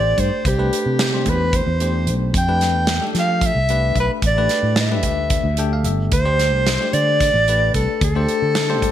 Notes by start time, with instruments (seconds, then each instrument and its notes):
Already playing: fretless electric bass A1, tine electric piano A3 D4 G4 C5, soprano saxophone D5
0.17 fretless electric bass G2, soprano saxophone C5, kick, closed hi-hat
0.45 fretless electric bass C2, soprano saxophone G4, kick, closed hi-hat
0.58 tine electric piano A3 D4 G4 B4
0.73 closed hi-hat
0.86 fretless electric bass C3
0.99 snare, closed hi-hat
1.13 tine electric piano A3 D4 G4 C5
1.26 fretless electric bass E2, soprano saxophone B4, kick, closed hi-hat
1.53 soprano saxophone C5, kick, closed hi-hat
1.67 fretless electric bass E2
1.80 tine electric piano A3 D4 G4 C5, closed hi-hat
2.07 fretless electric bass B1, closed hi-hat
2.33 fretless electric bass F2, kick, closed hi-hat
2.38 soprano saxophone G5
2.48 tine electric piano A3 D4 G4 B4
2.61 snare, closed hi-hat
2.74 fretless electric bass E2
2.87 snare, closed hi-hat
3.01 tine electric piano A3 D4 G4 A4
3.15 fretless electric bass F3, snare, closed hi-hat
3.19 soprano saxophone F5
3.41 kick, closed hi-hat
3.46 soprano saxophone E5
3.55 fretless electric bass C2
3.69 tine electric piano A3 D4 G4 B4, closed hi-hat
3.96 fretless electric bass B1, kick, closed hi-hat
4.00 soprano saxophone B4
4.22 fretless electric bass A1, kick, closed hi-hat
4.27 soprano saxophone D5
4.37 tine electric piano A3 D4 G4 B4
4.49 snare, closed hi-hat
4.63 fretless electric bass A2
4.76 snare, closed hi-hat
4.80 soprano saxophone E5
4.91 tine electric piano A3 D4 G4 B4
5.03 fretless electric bass D2, kick, closed hi-hat
5.30 kick, closed hi-hat
5.44 fretless electric bass D2
5.57 tine electric piano A3 D4 G4 A4 G5, closed hi-hat
5.73 tine electric piano F5
5.84 fretless electric bass G1, tine electric piano E5, closed hi-hat
6.12 fretless electric bass D2, soprano saxophone C5, kick, closed hi-hat
6.25 tine electric piano A3 D4 G4 C5
6.39 snare, closed hi-hat
6.53 fretless electric bass C2
6.66 snare, closed hi-hat
6.81 tine electric piano A3 D4 G4 C5
6.93 fretless electric bass D3, soprano saxophone D5, closed hi-hat
7.21 kick, snare, closed hi-hat
7.34 fretless electric bass A1
7.48 tine electric piano A3 D4 G4 B4, closed hi-hat
7.74 fretless electric bass C2, soprano saxophone A4, kick, closed hi-hat
8.01 fretless electric bass D2, soprano saxophone A4, kick, closed hi-hat
8.16 tine electric piano A3 D4 G4 C5
8.29 closed hi-hat
8.42 fretless electric bass D3
8.55 snare, closed hi-hat
8.69 tine electric piano A3 D4 G4 C5
8.82 fretless electric bass G2, kick, closed hi-hat